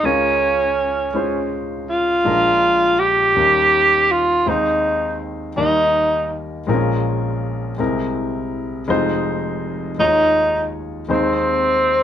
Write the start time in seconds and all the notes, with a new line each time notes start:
0.03 C#2 C#3 G#3 C#4 F4 A#4
1.14 G#3 C#4 F4 C5
1.89 F4
2.24 A#1 A#2 G#3 D4 F4 A#4
2.99 G4
3.35 D#2 D#3 G3 C#4 D#4 A#4
4.11 F4
4.46 D#2 D#3 G#3 C4 D#4 C5
5.56 D#2 D#3 G3 A#3 D#4 A#4
6.67 A#1 A#2 G#3 C4 F4 A#4
6.74 C#4
7.78 C2 C3 G#3 C4 E4 A#4
8.88 F1 F2 G#3 D#4 F4 C5
9.98 D#2 D#3 G#3 D#4 F4 C#5
11.08 D#2 D#3 G#3 C4 D#4 C5